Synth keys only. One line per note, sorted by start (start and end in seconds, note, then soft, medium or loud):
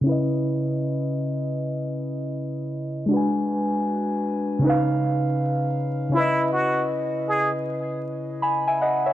0.01 3.03 C#3 medium
0.01 3.05 C#4 medium
0.07 3.06 E4 medium
0.07 3.07 B4 medium
0.12 3.09 D#5 medium
3.06 4.57 G#3 medium
3.06 4.58 D4 medium
3.11 4.59 F#4 medium
3.11 4.60 B4 medium
3.16 4.62 G#5 medium
4.59 6.08 C#3 medium
4.59 6.10 C#4 medium
4.64 6.12 D#4 medium
4.64 6.13 B4 medium
4.69 6.14 F5 medium
6.09 9.11 C#3 medium
6.09 9.12 C#4 medium
6.14 9.13 E4 medium
6.14 9.13 B4 medium
6.20 8.41 D#5 medium
8.42 8.66 G#5 medium
8.42 8.66 B5 medium
8.68 8.80 E5 medium
8.68 8.79 G#5 medium
8.82 9.04 D#5 medium
8.82 9.04 F#5 medium
9.06 9.13 C#5 soft
9.06 9.13 E5 medium